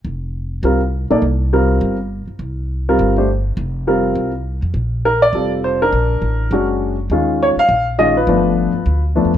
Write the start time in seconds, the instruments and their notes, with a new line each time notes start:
0.05 upright bass F1
0.63 upright bass C2, grand piano G3 C4 F4 A#4
1.10 upright bass B1, grand piano A#3 D#4 A4 D5
1.22 upright bass C2
1.53 grand piano G3 C4 F4 A#4
1.81 upright bass G1
2.28 muted upright bass stroke
2.39 upright bass C2
2.89 grand piano G3 C4 F4 A#4
2.99 upright bass G1
3.17 grand piano A3 D4 G4 C5
3.57 upright bass F1
3.87 grand piano G3 C4 F4 A#4
4.15 upright bass C2
4.62 upright bass F2
4.74 upright bass A#1
5.05 grand piano A#4
5.22 grand piano D5
5.33 upright bass F1, grand piano G3 C4 F4 A4
5.64 grand piano C5
5.82 grand piano D4 A#4
5.92 upright bass A#1
6.22 upright bass A1
6.51 upright bass F#1, grand piano G#3 C#4 D4 F#4
7.10 upright bass D#2, grand piano D#3 G#3 C#4 F4
7.43 grand piano C#5
7.56 grand piano F5, muted upright bass stroke
7.69 upright bass A#1
7.98 grand piano D#3 G#3 C#4 F4 D#5
8.17 grand piano F4 B4
8.27 upright bass G1, grand piano F3 A3 B3 D4
8.73 muted upright bass stroke
8.86 upright bass D2
9.15 grand piano F3 A3 B3 D4
9.25 upright bass F2
9.34 upright bass G2